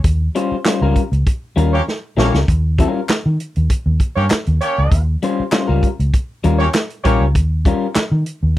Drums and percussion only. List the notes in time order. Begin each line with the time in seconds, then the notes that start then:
0.04 kick, closed hi-hat
0.35 closed hi-hat
0.65 snare, clap, closed hi-hat
0.96 kick, closed hi-hat
1.13 closed hi-hat
1.27 kick, closed hi-hat
1.58 closed hi-hat
1.88 snare
2.18 snare
2.34 snare
2.48 kick, closed hi-hat
2.78 kick, closed hi-hat
3.09 snare, clap, closed hi-hat
3.40 closed hi-hat
3.56 closed hi-hat
3.70 kick, closed hi-hat
4.00 kick, closed hi-hat
4.30 snare, clap, closed hi-hat
4.46 closed hi-hat
4.61 closed hi-hat
4.92 kick, closed hi-hat
5.22 closed hi-hat
5.52 snare, clap, closed hi-hat
5.83 kick, closed hi-hat
6.00 closed hi-hat
6.14 kick, closed hi-hat
6.44 closed hi-hat
6.74 snare, clap, closed hi-hat
6.90 closed hi-hat
7.05 kick, closed hi-hat
7.35 kick, closed hi-hat
7.65 kick, closed hi-hat
7.95 snare, clap, closed hi-hat
8.26 closed hi-hat